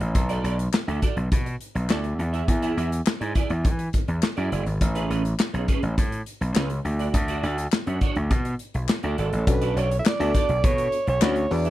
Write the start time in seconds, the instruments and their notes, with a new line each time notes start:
0.00 slap bass A1, muted clean electric guitar stroke, closed hi-hat
0.15 slap bass B1, muted clean electric guitar stroke, kick, closed hi-hat
0.29 clean electric guitar F#4 A4 D5, closed hi-hat
0.44 slap bass B1, clean electric guitar F#4 A4 D5, closed hi-hat
0.59 muted clean electric guitar stroke, closed hi-hat
0.73 muted clean electric guitar stroke, snare, clap
0.88 slap bass D2, clean electric guitar F#4 A4 E5, closed hi-hat
1.02 clean electric guitar F#4 A4 D5, kick, closed hi-hat
1.17 slap bass B1, muted clean electric guitar stroke, closed hi-hat
1.31 slap bass B2, muted clean electric guitar stroke, kick, closed hi-hat
1.46 muted clean electric guitar stroke, closed hi-hat
1.61 closed hi-hat
1.75 slap bass B1, muted clean electric guitar stroke, closed hi-hat
1.89 slap bass D2, clean electric guitar F#4 A4 D5, snare, clap
2.04 muted clean electric guitar stroke, closed hi-hat
2.18 slap bass E2, muted clean electric guitar stroke, closed hi-hat
2.33 clean electric guitar E4 G#4 E5, closed hi-hat
2.47 slap bass E2, muted clean electric guitar stroke, kick, closed hi-hat
2.62 clean electric guitar E4 G#4 E5, closed hi-hat
2.77 slap bass E2, clean electric guitar E4 G#4 E5, closed hi-hat
2.91 muted clean electric guitar stroke, closed hi-hat
3.06 muted clean electric guitar stroke, snare, clap
3.20 slap bass G#2, clean electric guitar E4 G#4 D5, closed hi-hat
3.35 clean electric guitar E4 G#4 D5, kick, closed hi-hat
3.50 slap bass E2, muted clean electric guitar stroke, closed hi-hat
3.64 slap bass E3, muted clean electric guitar stroke, kick, closed hi-hat
3.79 muted clean electric guitar stroke, closed hi-hat
3.93 kick, closed hi-hat
4.08 slap bass E2, muted clean electric guitar stroke, closed hi-hat
4.23 muted clean electric guitar stroke, snare, clap
4.37 slap bass F#2, clean electric guitar E4 G#4 D5, closed hi-hat
4.51 slap bass F#1, clean electric guitar E4 G#4 D5, closed hi-hat
4.66 slap bass G#1, muted clean electric guitar stroke, closed hi-hat
4.81 slap bass A1, muted clean electric guitar stroke, kick, closed hi-hat
4.95 clean electric guitar C#4 G#4 B4, closed hi-hat
5.10 slap bass A1, clean electric guitar C#4 G#4 B4, closed hi-hat
5.24 muted clean electric guitar stroke, closed hi-hat
5.39 muted clean electric guitar stroke, snare, clap
5.53 slap bass B1, clean electric guitar C#4 G#4 C#5, closed hi-hat
5.68 clean electric guitar C#4 G#4 B4, kick, closed hi-hat
5.83 slap bass A1, muted clean electric guitar stroke, closed hi-hat
5.97 slap bass A2, muted clean electric guitar stroke, kick, closed hi-hat
6.12 muted clean electric guitar stroke, closed hi-hat
6.26 closed hi-hat
6.41 slap bass B1, muted clean electric guitar stroke, closed hi-hat
6.55 slap bass C#2, clean electric guitar C#4 G#4 B4, snare, clap
6.70 muted clean electric guitar stroke, closed hi-hat
6.85 slap bass D2, muted clean electric guitar stroke, closed hi-hat
6.99 clean electric guitar D4 F#4 D5, closed hi-hat
7.14 slap bass D2, muted clean electric guitar stroke, kick, closed hi-hat
7.28 clean electric guitar D4 F#4 D5, closed hi-hat
7.43 slap bass D2, clean electric guitar D4 F#4 D5, closed hi-hat
7.57 muted clean electric guitar stroke, closed hi-hat
7.72 muted clean electric guitar stroke, snare, clap
7.86 slap bass F#2, clean electric guitar D4 F#4 C#5, closed hi-hat
8.01 clean electric guitar D4 F#4 C#5, kick, closed hi-hat
8.16 slap bass D2, muted clean electric guitar stroke, closed hi-hat
8.30 slap bass B2, muted clean electric guitar stroke, kick, closed hi-hat
8.45 muted clean electric guitar stroke, closed hi-hat
8.59 closed hi-hat
8.74 slap bass B1, muted clean electric guitar stroke, closed hi-hat
8.89 muted clean electric guitar stroke, snare, clap
9.03 slap bass D2, clean electric guitar F#4 A4 D5, closed hi-hat
9.18 slap bass G#1, clean electric guitar F#4 A4 D5, alto saxophone A4, closed hi-hat
9.33 slap bass A1, muted clean electric guitar stroke, closed hi-hat
9.47 slap bass B1, fm electric piano C#4 D4 F#4 A4, alto saxophone B4, muted clean electric guitar stroke, kick, closed hi-hat
9.61 clean electric guitar F#4 A4 D5, closed hi-hat
9.76 slap bass B1, clean electric guitar F#4 A4 D5, alto saxophone C#5, closed hi-hat
9.91 muted clean electric guitar stroke, closed hi-hat
9.99 alto saxophone E5
10.06 alto saxophone D5, muted clean electric guitar stroke, snare, clap
10.19 slap bass D2, fm electric piano B3 D4 F#4 A4, clean electric guitar F#4 A4 E5, closed hi-hat
10.34 clean electric guitar F#4 A4 D5, kick, closed hi-hat
10.49 slap bass B1, muted clean electric guitar stroke, closed hi-hat
10.64 slap bass B2, alto saxophone C#5, muted clean electric guitar stroke, kick, closed hi-hat
10.78 muted clean electric guitar stroke, closed hi-hat
10.92 closed hi-hat
11.07 slap bass B1, alto saxophone C#5, muted clean electric guitar stroke, closed hi-hat
11.21 slap bass D2, fm electric piano C#4 D4 F#4 B4, clean electric guitar F#4 A4 D5, snare, clap
11.36 muted clean electric guitar stroke, closed hi-hat
11.50 slap bass E2, fm electric piano D4 F#4 G#4 B4, alto saxophone D5, muted clean electric guitar stroke, open hi-hat
11.65 clean electric guitar E4 G#4 E5, closed hi-hat